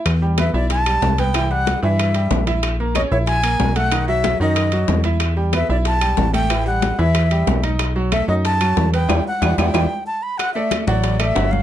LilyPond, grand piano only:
\new Staff \with { instrumentName = "Grand piano" } { \time 4/4 \key e \minor \tempo 4 = 186 r8 <g g'>8 <b b'>8 <e' e''>4 <g g'>4 <b b'>8 | <e e'>8 <g g'>4 <e e'>4 <g g'>4 <e' e''>8~ | <e' e''>8 <ais ais'>8 <cis' cis''>8 <e' e''>4 <ais ais'>4 <a a'>8 | <dis dis'>8 <fis fis'>4 <dis dis'>4 <fis fis'>4 <e' e''>8~ |
<e' e''>8 <g g'>8 <b b'>8 <e' e''>4 <g g'>4 <a a'>8 | <e e'>8 <g g'>4 <e e'>4 <g g'>4 <dis' dis''>8~ | <dis' dis''>8 <fis fis'>8 <a a'>8 <dis' dis''>4 <fis fis'>4 <b b'>8 | <d' e' g'>8 r8 <d' e' g'>8 <d' e' g'>8 <d' e' g'>8 r4. |
r8 <a a' d''>4 <fis fis' fis''>4 <a a' d''>8 <fis fis' fis''>4 | }